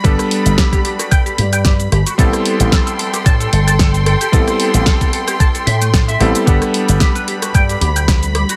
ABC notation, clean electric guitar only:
X:1
M:4/4
L:1/16
Q:"Swing 16ths" 1/4=112
K:G
V:1 name="Clean electric guitar"
G z3 G G G F g G G g G z G F | A z3 A A A G a A A a A z A G | A z3 A A A G a A e A, A e A, e | G z3 G B G F g G G g G z G F |]